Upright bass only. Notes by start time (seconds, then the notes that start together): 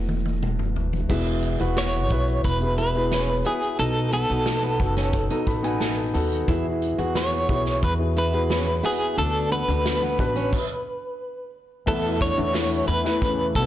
Already playing: E1
1.10 E1
1.61 E1
2.11 B1
2.45 E1
3.79 B1
4.30 B1
4.80 F#1
5.47 A1
6.15 D#2
6.48 E2
6.98 E2
7.49 B1
7.83 E2
9.18 D2
9.68 D2
10.19 A1
11.87 E2
12.38 E2
12.88 E2
13.56 B1